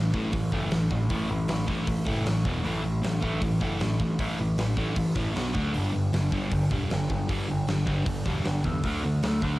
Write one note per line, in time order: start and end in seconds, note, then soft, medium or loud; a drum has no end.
0.00 0.13 A1 medium
0.00 0.12 A2 medium
0.00 0.12 E3 medium
0.13 0.32 A1 medium
0.13 0.30 A2 medium
0.13 0.31 E3 medium
0.13 0.32 A3 medium
0.13 kick medium
0.32 0.51 A1 medium
0.32 0.50 A2 medium
0.32 0.50 E3 medium
0.32 kick loud
0.32 open hi-hat medium
0.52 0.70 F#1 medium
0.52 0.70 A2 medium
0.52 0.70 E3 medium
0.52 0.71 A3 medium
0.52 kick medium
0.71 0.90 A1 medium
0.71 0.89 A2 medium
0.71 0.89 E3 medium
0.71 snare loud
0.71 open hi-hat medium
0.91 1.09 A1 medium
0.91 1.08 A2 medium
0.91 1.09 E3 medium
0.91 kick medium
1.09 1.28 A1 medium
1.09 1.28 A2 medium
1.09 1.28 E3 medium
1.09 1.29 A3 loud
1.09 kick loud
1.09 open hi-hat medium
1.29 1.48 A1 medium
1.29 1.47 A2 medium
1.29 1.47 E3 medium
1.48 1.67 A1 medium
1.48 1.65 A2 medium
1.48 1.66 E3 medium
1.48 snare loud
1.48 open hi-hat medium
1.66 1.86 A1 medium
1.66 1.85 A2 medium
1.66 1.86 E3 loud
1.66 1.86 A3 loud
1.66 kick medium
1.87 2.05 A1 medium
1.87 2.04 A2 medium
1.87 2.05 E3 medium
1.87 kick loud
1.87 open hi-hat medium
2.05 2.25 F#1 medium
2.05 2.24 A2 medium
2.05 2.24 E3 medium
2.05 2.25 A3 loud
2.05 kick medium
2.25 2.44 A1 medium
2.25 2.43 A2 medium
2.25 2.43 E3 medium
2.25 snare loud
2.25 open hi-hat medium
2.45 2.63 E1 medium
2.45 2.63 E2 medium
2.45 2.63 B2 medium
2.45 2.64 E3 loud
2.45 kick loud
2.64 2.82 A1 medium
2.64 2.81 A2 medium
2.64 2.82 E3 loud
2.64 2.83 A3 loud
2.64 open hi-hat medium
2.82 3.02 A1 medium
2.82 3.01 A2 medium
2.82 3.01 E3 medium
3.02 3.22 A1 medium
3.02 3.20 A2 medium
3.02 3.20 E3 medium
3.02 snare loud
3.02 open hi-hat medium
3.21 3.41 A1 medium
3.21 3.40 A2 medium
3.21 3.40 E3 loud
3.21 3.41 A3 loud
3.21 kick medium
3.41 3.60 A1 medium
3.41 3.59 A2 medium
3.41 3.59 E3 medium
3.41 kick loud
3.41 open hi-hat medium
3.60 3.79 F#1 medium
3.60 3.79 A2 medium
3.60 3.79 E3 medium
3.60 3.80 A3 medium
3.60 kick medium
3.80 3.99 A1 medium
3.80 3.98 A2 medium
3.80 3.98 E3 medium
3.80 snare loud
3.80 open hi-hat medium
4.00 4.18 A1 medium
4.00 4.18 A2 medium
4.00 4.18 E3 medium
4.00 kick medium
4.19 4.37 A1 medium
4.19 4.38 A2 medium
4.19 4.38 E3 loud
4.19 4.38 A3 loud
4.19 kick loud
4.19 open hi-hat medium
4.40 4.57 A1 medium
4.40 4.57 A2 medium
4.40 4.57 E3 medium
4.58 4.77 A1 medium
4.58 4.76 A2 medium
4.58 4.76 E3 medium
4.58 snare loud
4.58 open hi-hat medium
4.77 4.95 A1 medium
4.77 4.95 A2 medium
4.77 4.95 E3 medium
4.77 4.96 A3 loud
4.77 kick medium
4.96 5.14 A1 medium
4.96 5.14 A2 medium
4.96 5.14 E3 medium
4.96 kick loud
4.96 open hi-hat medium
5.15 5.34 A1 medium
5.15 5.33 A2 medium
5.15 5.34 E3 medium
5.15 5.34 A3 loud
5.15 kick medium
5.33 5.53 B1 medium
5.33 5.53 B2 medium
5.33 5.53 F#3 medium
5.33 5.54 B3 loud
5.33 snare loud
5.33 open hi-hat medium
5.54 5.75 D2 medium
5.54 5.73 D3 medium
5.54 5.73 A3 medium
5.54 5.73 D4 loud
5.54 kick loud
5.74 5.92 G1 medium
5.74 5.91 G2 medium
5.74 5.92 D3 loud
5.74 5.93 G3 loud
5.74 open hi-hat medium
5.92 6.11 G1 medium
5.92 6.10 G2 medium
5.92 6.11 D3 medium
6.13 6.31 G1 medium
6.13 6.30 G2 medium
6.13 6.30 D3 medium
6.13 snare loud
6.13 open hi-hat medium
6.32 6.50 G1 medium
6.32 6.51 G2 medium
6.32 6.51 D3 loud
6.32 6.51 G3 loud
6.32 kick medium
6.51 6.69 G1 medium
6.51 6.69 G2 medium
6.51 6.70 D3 medium
6.51 kick loud
6.51 open hi-hat medium
6.71 6.89 E1 medium
6.71 6.89 G2 medium
6.71 6.90 D3 medium
6.71 6.90 G3 loud
6.71 kick medium
6.90 7.09 G1 medium
6.90 7.08 G2 medium
6.90 7.08 D3 medium
6.90 snare loud
6.90 open hi-hat medium
7.10 7.28 G1 medium
7.10 7.27 G2 medium
7.10 7.27 D3 medium
7.10 kick medium
7.29 7.47 G1 medium
7.29 7.47 G2 medium
7.29 7.47 D3 medium
7.29 7.48 G3 loud
7.29 kick loud
7.29 open hi-hat medium
7.48 7.67 G1 medium
7.48 7.66 G2 medium
7.48 7.66 D3 medium
7.68 7.86 G1 medium
7.68 7.85 G2 medium
7.68 7.85 D3 medium
7.68 snare loud
7.68 open hi-hat medium
7.86 8.05 G1 medium
7.86 8.04 G2 loud
7.86 8.04 D3 loud
7.86 8.05 G3 loud
7.86 kick medium
8.05 8.24 G1 medium
8.05 8.23 G2 medium
8.05 8.23 D3 medium
8.05 kick loud
8.05 open hi-hat medium
8.25 8.44 E1 medium
8.25 8.44 G2 medium
8.25 8.44 D3 medium
8.25 8.45 G3 loud
8.25 kick medium
8.45 8.63 G1 medium
8.45 8.62 G2 medium
8.45 8.63 D3 medium
8.45 snare loud
8.45 open hi-hat medium
8.64 8.83 E2 medium
8.64 8.82 G2 medium
8.64 8.82 D3 medium
8.64 kick medium
8.84 9.02 D2 medium
8.84 9.02 D3 medium
8.84 9.03 A3 loud
8.84 9.03 D4 medium
8.84 kick loud
8.84 open hi-hat medium
9.03 9.21 D2 medium
9.03 9.22 D3 medium
9.03 9.21 A3 medium
9.23 9.41 D2 medium
9.23 9.40 D3 medium
9.23 9.41 A3 medium
9.23 snare loud
9.23 open hi-hat medium
9.42 9.59 D2 medium
9.42 9.59 D3 loud
9.42 9.59 A3 loud
9.42 9.59 D4 loud
9.42 kick medium